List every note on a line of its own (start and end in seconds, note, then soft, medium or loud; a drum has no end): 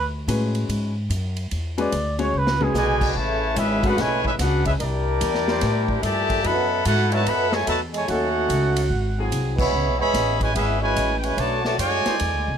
0.00 0.27 D2 medium
0.28 0.68 A2 loud
0.28 0.91 G#3 medium
0.28 0.91 C#4 medium
0.28 0.91 F#4 medium
0.28 0.91 B4 medium
0.28 hi-hat pedal medium
0.28 ride medium
0.55 ride medium
0.69 1.09 G#2 medium
0.69 ride medium
1.09 1.50 F#2 medium
1.09 hi-hat pedal medium
1.09 ride medium
1.36 ride medium
1.51 1.92 E2 medium
1.51 ride medium
1.78 1.91 G#3 medium
1.78 1.91 C#4 medium
1.78 1.91 F#4 medium
1.78 1.91 B4 medium
1.78 2.18 D5 medium
1.78 ride medium
1.92 2.32 D2 loud
1.92 hi-hat pedal medium
1.92 ride medium
2.19 2.32 G#3 medium
2.19 2.32 C#4 medium
2.19 2.32 F#4 medium
2.19 2.32 C#5 medium
2.19 ride medium
2.23 2.39 C#5 medium
2.34 2.73 C#2 loud
2.38 2.65 B4 medium
2.47 snare medium
2.61 2.74 G#3 medium
2.61 2.74 C#4 medium
2.61 2.74 F#4 medium
2.61 3.10 G#4 loud
2.61 2.74 B4 medium
2.61 mid tom medium
2.73 3.14 B1 medium
2.73 3.12 B2 medium
2.73 3.12 D3 medium
2.73 3.12 G#3 medium
2.73 3.14 F#4 medium
2.73 3.14 B4 medium
2.73 3.14 D5 medium
2.73 3.14 G#5 loud
2.73 snare medium
2.73 hi-hat pedal medium
3.01 kick medium
3.01 crash loud
3.14 3.55 A1 medium
3.14 3.56 C#3 medium
3.14 3.56 E3 loud
3.14 3.56 A3 medium
3.14 3.58 E4 medium
3.14 3.58 B4 medium
3.14 3.58 C#5 medium
3.14 3.58 A5 medium
3.56 3.96 G#1 loud
3.56 3.83 G#3 medium
3.56 3.83 C#4 medium
3.56 3.85 C#4 medium
3.56 3.83 E4 medium
3.56 3.84 G#4 medium
3.56 3.84 B4 medium
3.56 3.85 E5 loud
3.56 hi-hat pedal medium
3.56 ride medium
3.82 4.36 A3 loud
3.82 4.36 C#4 loud
3.82 3.99 D4 medium
3.82 3.97 F#4 medium
3.82 4.36 G#4 medium
3.82 3.99 G#4 medium
3.82 4.36 B4 loud
3.82 3.99 B4 medium
3.82 3.99 F#5 medium
3.82 kick medium
3.82 ride medium
3.98 4.38 B1 medium
3.98 4.24 C#3 medium
3.98 4.24 E3 loud
3.98 4.23 G#3 loud
3.98 4.26 E4 medium
3.98 4.26 B4 medium
3.98 4.26 C#5 medium
3.98 4.26 G#5 loud
3.98 snare soft
3.98 ride medium
4.24 4.31 G#3 medium
4.24 4.31 C#4 medium
4.24 4.32 C#4 medium
4.24 4.31 E4 medium
4.24 4.33 G#4 medium
4.24 4.33 B4 medium
4.24 4.33 E5 medium
4.24 kick medium
4.39 4.79 C#2 medium
4.39 4.64 D4 medium
4.39 4.64 F#4 medium
4.39 4.64 G#4 medium
4.39 4.64 B4 medium
4.39 4.64 F#5 medium
4.39 snare soft
4.39 hi-hat pedal medium
4.39 ride medium
4.65 4.71 G#3 medium
4.65 4.72 C#4 medium
4.65 4.73 C#4 medium
4.65 4.71 E4 medium
4.65 4.73 G#4 medium
4.65 4.73 B4 medium
4.65 4.73 E5 medium
4.65 kick medium
4.65 ride medium
4.80 5.20 C2 medium
4.80 5.99 G3 loud
4.80 5.99 D4 loud
4.80 6.00 E4 medium
4.80 6.00 G4 medium
4.80 5.99 A#4 loud
4.80 6.00 A#4 medium
4.80 6.00 D5 loud
4.80 ride medium
5.21 5.61 E2 loud
5.21 hi-hat pedal medium
5.21 ride medium
5.35 snare soft
5.47 6.00 D4 medium
5.47 6.00 E4 medium
5.47 6.00 A#4 medium
5.47 6.00 C5 loud
5.47 snare medium
5.61 6.02 A2 medium
5.61 snare soft
5.61 ride medium
5.88 kick medium
6.02 6.43 G2 medium
6.02 6.44 A#2 loud
6.02 6.44 E3 loud
6.02 6.44 A3 medium
6.02 6.44 G4 medium
6.02 6.44 D5 medium
6.02 6.44 E5 medium
6.02 6.45 A5 loud
6.02 hi-hat pedal medium
6.02 ride medium
6.30 kick medium
6.30 ride medium
6.44 6.84 F#2 medium
6.44 6.85 B2 loud
6.44 6.85 F#3 loud
6.44 6.62 F#3 medium
6.44 6.83 B3 loud
6.44 6.62 D4 medium
6.44 6.62 E4 medium
6.44 6.85 A4 loud
6.44 6.62 B4 loud
6.44 6.86 E5 loud
6.44 6.85 F#5 medium
6.44 6.86 B5 loud
6.44 ride medium
6.84 7.25 G#2 loud
6.84 7.10 A3 medium
6.84 7.09 B3 medium
6.84 7.11 E4 loud
6.84 7.10 F#4 medium
6.84 7.10 A4 loud
6.84 7.10 B4 medium
6.84 7.11 F#5 loud
6.84 hi-hat pedal medium
6.84 ride medium
7.11 7.24 B2 loud
7.11 7.24 F#3 medium
7.11 7.22 F#3 loud
7.11 7.26 A3 medium
7.11 7.22 D4 medium
7.11 7.22 E4 medium
7.11 7.27 F#4 medium
7.11 7.27 B4 medium
7.11 7.22 C#5 loud
7.11 7.26 E5 loud
7.11 7.27 A5 loud
7.11 ride medium
7.25 7.66 F#2 medium
7.25 7.52 B2 loud
7.25 7.52 F#3 loud
7.25 7.52 B3 loud
7.25 7.52 A4 loud
7.25 7.53 E5 loud
7.25 7.54 F#5 loud
7.25 7.54 B5 loud
7.25 ride medium
7.51 7.66 G#3 medium
7.51 7.68 E4 medium
7.51 7.67 A4 medium
7.51 7.68 C#5 medium
7.51 7.68 G#5 loud
7.51 snare medium
7.65 8.07 E2 medium
7.65 7.78 B2 medium
7.65 7.78 F#3 medium
7.65 7.78 A3 medium
7.65 7.80 F#4 medium
7.65 7.80 B4 medium
7.65 7.80 E5 medium
7.65 7.80 A5 loud
7.65 hi-hat pedal medium
7.65 ride medium
7.93 8.07 G#3 medium
7.93 8.08 E4 medium
7.93 8.08 A4 medium
7.93 8.08 C#5 medium
7.93 8.08 G#5 loud
7.93 ride medium
8.06 8.48 D#2 medium
8.06 8.26 F#3 medium
8.06 8.85 A3 medium
8.06 8.85 C#4 medium
8.06 8.26 C#4 medium
8.06 8.26 D#4 medium
8.06 8.87 D#4 medium
8.06 9.27 F#4 loud
8.06 8.26 A4 loud
8.06 8.87 A4 medium
8.06 8.87 C#5 medium
8.06 9.28 F#5 loud
8.06 ride medium
8.49 8.89 C#2 loud
8.49 hi-hat pedal medium
8.49 ride medium
8.76 ride medium
8.90 9.30 G#1 medium
9.17 9.70 F#3 loud
9.17 9.70 C4 medium
9.17 9.70 E4 loud
9.17 9.70 G#4 loud
9.31 9.71 C2 medium
9.31 hi-hat pedal medium
9.31 ride medium
9.56 9.95 E3 medium
9.56 9.95 G#3 medium
9.56 9.95 B3 medium
9.56 9.97 B5 loud
9.56 kick loud
9.56 crash medium
9.60 9.98 G#4 medium
9.60 9.98 C#5 medium
9.60 9.98 E5 medium
9.73 9.87 C#2 medium
9.87 9.99 B1 medium
9.97 10.13 G#1 medium
9.97 10.37 E3 loud
9.97 10.37 G#3 loud
9.97 10.37 B3 medium
9.97 10.38 G#4 loud
9.97 10.38 C#5 loud
9.97 10.39 E5 medium
9.97 10.38 B5 loud
10.14 10.54 A1 medium
10.14 snare soft
10.14 hi-hat pedal medium
10.14 ride medium
10.38 10.54 B2 medium
10.38 10.54 E3 medium
10.38 10.52 G#3 medium
10.38 10.54 B4 medium
10.38 10.56 C#5 medium
10.38 kick medium
10.38 ride medium
10.42 10.56 E4 medium
10.42 10.56 G#5 loud
10.53 10.95 G#1 medium
10.53 10.79 G#3 medium
10.53 10.79 B3 medium
10.53 10.80 C#4 medium
10.53 10.79 E4 medium
10.53 10.80 G#4 medium
10.53 10.80 B4 medium
10.53 10.80 E5 loud
10.53 ride medium
10.81 11.13 B2 medium
10.81 11.14 E3 medium
10.81 11.13 G#3 medium
10.81 11.35 G#3 loud
10.81 11.35 C#4 medium
10.81 11.35 E4 medium
10.81 11.14 E4 medium
10.81 11.35 B4 loud
10.81 11.14 B4 medium
10.81 11.14 C#5 medium
10.81 11.15 G#5 loud
10.96 11.36 A1 loud
10.96 hi-hat pedal medium
10.96 ride medium
11.18 11.24 G5 medium
11.22 11.37 B2 medium
11.22 11.37 E3 medium
11.22 11.37 G#3 medium
11.22 11.38 E4 medium
11.22 11.38 B4 medium
11.22 11.38 C#5 medium
11.22 11.38 G#5 medium
11.22 ride medium
11.35 11.77 B1 medium
11.35 11.63 D3 medium
11.35 11.62 F#3 medium
11.35 11.62 A3 loud
11.35 11.56 A3 medium
11.35 11.56 C#4 medium
11.35 11.56 D4 medium
11.35 ride medium
11.39 11.65 F#4 medium
11.39 11.57 B4 medium
11.39 11.64 C#5 medium
11.39 11.64 D5 medium
11.39 11.64 A5 loud
11.63 11.76 D3 medium
11.63 11.77 F#3 medium
11.63 11.77 A3 medium
11.63 11.79 F#4 medium
11.63 11.78 C#5 medium
11.63 11.78 D5 medium
11.63 11.78 A5 loud
11.63 snare soft
11.77 12.03 F#2 loud
11.77 12.17 A2 medium
11.77 12.56 D3 medium
11.77 12.56 G#3 medium
11.77 12.18 F#4 medium
11.77 12.18 C#5 medium
11.77 12.58 D5 loud
11.77 12.58 G#5 loud
11.77 hi-hat pedal medium
11.77 ride medium
12.06 12.16 G#3 loud
12.06 12.16 D4 medium
12.06 12.16 E4 medium
12.06 12.16 C5 loud
12.06 muted upright bass stroke soft
12.06 snare medium
12.06 ride medium
12.19 12.34 E2 medium
12.19 ride medium
12.34 12.48 D2 medium
12.48 12.58 C2 medium